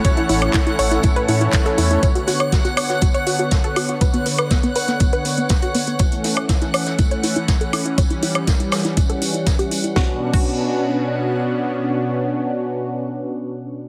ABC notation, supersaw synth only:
X:1
M:4/4
L:1/8
Q:1/4=121
K:Bm
V:1 name="Supersaw synth"
[A,,CEAc]4- [A,,CEAc] [A,,CEAc]3 | z8 | z8 | z8 |
z8 | z8 | z8 |]